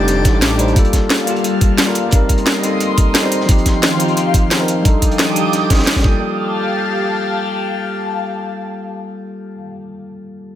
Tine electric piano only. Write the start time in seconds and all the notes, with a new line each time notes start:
Already playing: G3 D4 D#4 G4 A4
0.57 G3 D4 D#4 C5
0.73 G3 A#3
0.77 F4 A4
1.24 G3 A#3
1.28 F4 G4
1.86 G3 A#3 F4 A#4
2.09 G3 C4
2.14 D#4 A#4
2.60 G3 C4
2.65 D#4 A4
3.22 G3 C4 D#4 C5
3.46 F3 C4
3.50 D#4 G4
3.97 F3 C4
4.01 D#4 F4
4.58 F3 C4 D#4 A#4
4.82 G3 D4
4.86 D#4 A4
5.33 G3 D4
5.37 D#4 G4
5.99 G3 A#3
6.06 F4 A4